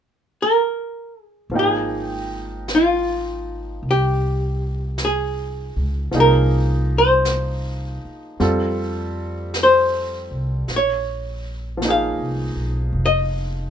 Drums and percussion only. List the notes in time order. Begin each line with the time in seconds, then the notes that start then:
1.52 brush sweep
2.68 brush sweep, snare, hi-hat pedal
3.83 brush sweep
4.98 brush sweep, snare, hi-hat pedal
6.12 brush sweep, snare
7.25 brush sweep, snare, hi-hat pedal
8.40 brush sweep, snare
9.54 brush sweep, snare, hi-hat pedal
10.68 brush sweep, snare
11.82 brush sweep, snare, hi-hat pedal
12.96 brush sweep